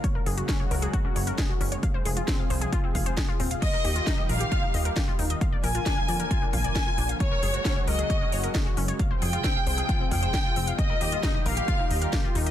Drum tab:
CC |----------------|----------------|x---------------|----------------|
HH |x-oxx-oxx-oxx-ox|x-oxx-oxx-oxx-ox|x-oxx-oxx-oxx-ox|x-oxx-oxx-oxx-ox|
SD |----o-------o---|----o-------o---|----o-------o---|----o-------o---|
BD |o---o---o---o---|o---o---o-o-o---|o---o---o---o---|o---o---o-o-o---|

CC |----------------|----------------|----------------|
HH |x-oxx-oxx-oxx-ox|x-oxx-oxx-oxx-ox|x-oxx-oxx-oxx-ox|
SD |----o-------o---|----o-------o---|----o-------o---|
BD |o---o---o---o---|o---o---o-o-o---|o---o---o---o---|